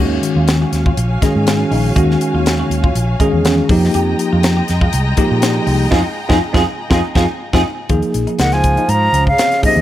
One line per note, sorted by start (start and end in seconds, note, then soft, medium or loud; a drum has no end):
0.00 0.17 D#2 medium
0.00 0.92 D#3 medium
0.00 0.92 G#3 medium
0.00 0.92 C#4 medium
0.00 0.19 F#4 medium
0.00 0.92 F#4 medium
0.00 3.67 F#4 medium
0.00 3.67 C#5 medium
0.00 3.67 F5 medium
0.00 3.67 G#5 medium
0.23 closed hi-hat medium
0.36 0.63 D#2 medium
0.36 0.57 F4 medium
0.48 snare loud
0.48 closed hi-hat medium
0.62 0.82 F#4 medium
0.73 0.91 D#2 medium
0.73 snare soft
0.73 closed hi-hat medium
0.86 1.07 F4 medium
0.86 kick medium
0.97 1.16 A#1 medium
0.97 closed hi-hat medium
1.22 1.92 D#3 medium
1.22 1.92 G#3 medium
1.22 1.92 C#4 medium
1.22 1.43 D#4 medium
1.22 1.92 G#4 medium
1.22 kick medium
1.22 snare soft
1.22 closed hi-hat medium
1.36 1.63 G#2 medium
1.47 1.67 C#4 medium
1.47 snare loud
1.47 closed hi-hat medium
1.71 1.90 A#1 medium
1.71 1.92 D#4 medium
1.71 open hi-hat medium
1.96 2.15 D#2 medium
1.96 2.89 D#3 medium
1.96 2.89 G#3 medium
1.96 2.89 C#4 medium
1.96 2.17 F#4 medium
1.96 2.89 F#4 medium
1.96 kick loud
1.96 closed hi-hat medium
2.11 snare soft
2.21 closed hi-hat medium
2.34 2.61 D#2 medium
2.34 2.55 F4 medium
2.46 snare loud
2.46 closed hi-hat medium
2.59 2.80 F#4 medium
2.70 2.89 D#2 medium
2.70 closed hi-hat medium
2.84 3.04 F4 medium
2.84 kick medium
2.95 3.14 A#1 medium
2.95 closed hi-hat medium
3.20 3.70 D#3 medium
3.20 3.70 G#3 medium
3.20 3.70 C#4 medium
3.20 3.40 D#4 medium
3.20 3.70 G#4 medium
3.20 kick medium
3.20 closed hi-hat medium
3.33 3.60 E2 medium
3.45 3.65 C#4 medium
3.45 snare loud
3.45 closed hi-hat medium
3.69 3.88 F2 medium
3.69 4.62 F3 medium
3.69 7.86 G#3 medium
3.69 4.63 A#3 medium
3.69 3.90 D#4 medium
3.69 4.63 D#4 medium
3.69 4.63 G4 medium
3.69 7.86 D#5 medium
3.69 7.86 G5 medium
3.69 7.86 A#5 medium
3.69 kick loud
3.69 open hi-hat medium
3.84 snare soft
3.94 4.13 F2 medium
3.94 4.15 G4 medium
3.94 closed hi-hat medium
4.19 closed hi-hat medium
4.33 4.60 F2 medium
4.33 4.53 F4 medium
4.43 snare loud
4.43 closed hi-hat medium
4.57 4.77 G4 medium
4.68 4.88 F2 medium
4.68 snare soft
4.68 closed hi-hat medium
4.81 5.02 F4 medium
4.81 kick medium
4.93 5.12 C2 medium
4.93 closed hi-hat medium
5.17 5.87 F3 medium
5.17 5.87 A#3 medium
5.17 5.87 D#4 medium
5.17 5.39 D#4 medium
5.17 5.88 G4 medium
5.17 kick medium
5.17 closed hi-hat medium
5.31 5.58 A#2 medium
5.42 5.63 D4 medium
5.42 snare loud
5.42 closed hi-hat medium
5.67 5.86 C2 medium
5.67 5.87 D#4 medium
5.67 open hi-hat medium
5.91 6.02 F2 medium
5.91 6.00 C4 medium
5.91 6.00 D#4 medium
5.91 6.00 D#4 loud
5.91 6.00 F4 medium
5.91 6.00 G#4 medium
5.91 kick medium
5.91 snare medium
6.29 6.38 F2 medium
6.29 6.37 C4 medium
6.29 6.37 D#4 loud
6.29 6.37 D#4 medium
6.29 6.37 F4 medium
6.29 6.37 G#4 medium
6.29 kick medium
6.29 snare medium
6.53 6.63 F2 medium
6.53 6.61 C4 medium
6.53 6.61 D#4 medium
6.53 6.62 D#4 medium
6.53 6.62 F4 medium
6.53 6.62 G#4 medium
6.53 kick medium
6.53 snare medium
6.90 7.01 F2 medium
6.90 6.99 C4 medium
6.90 6.99 D#4 medium
6.90 7.00 D#4 medium
6.90 6.99 F4 medium
6.90 7.00 F4 medium
6.90 7.00 G#4 medium
6.90 kick medium
6.90 snare loud
7.15 7.25 F2 medium
7.15 7.25 C4 medium
7.15 7.24 D#4 medium
7.15 7.24 F4 medium
7.15 7.25 F4 medium
7.15 7.24 G#4 medium
7.15 kick medium
7.15 snare medium
7.53 7.62 F2 medium
7.53 7.61 C4 medium
7.53 7.61 D#4 medium
7.53 7.61 F4 medium
7.53 7.61 G#4 medium
7.53 kick medium
7.53 snare medium
7.89 8.00 D#2 medium
7.89 8.83 F3 medium
7.89 8.83 A#3 medium
7.89 8.83 D#4 medium
7.89 8.10 F4 medium
7.89 8.83 G#4 medium
7.89 kick medium
7.89 closed hi-hat medium
8.02 closed hi-hat soft
8.14 8.25 A#1 medium
8.14 closed hi-hat medium
8.27 8.48 D#4 medium
8.27 closed hi-hat soft
8.39 8.76 C#2 medium
8.39 8.56 D#3 medium
8.39 8.55 F#5 medium
8.39 snare medium
8.39 closed hi-hat medium
8.52 8.92 F3 medium
8.52 8.73 F4 medium
8.52 8.91 G#5 medium
8.52 snare soft
8.52 closed hi-hat soft
8.64 kick medium
8.64 closed hi-hat medium
8.77 8.98 D#4 medium
8.77 closed hi-hat soft
8.88 9.07 G#2 medium
8.88 9.27 A#5 medium
8.88 closed hi-hat medium
8.92 9.29 F3 medium
9.13 9.32 C#2 medium
9.13 9.35 C#4 medium
9.13 closed hi-hat medium
9.27 9.63 C#3 medium
9.27 9.61 F5 medium
9.27 kick medium
9.38 9.60 C4 medium
9.38 snare loud
9.38 closed hi-hat medium
9.52 snare soft
9.52 closed hi-hat soft
9.62 9.82 C3 medium
9.62 9.82 F3 medium
9.62 9.82 A#3 medium
9.62 9.82 C#4 medium
9.62 9.82 D#4 medium
9.62 9.82 G#4 medium
9.62 9.82 D#5 medium
9.62 kick medium
9.62 open hi-hat medium
9.76 9.82 D#2 medium
9.76 closed hi-hat soft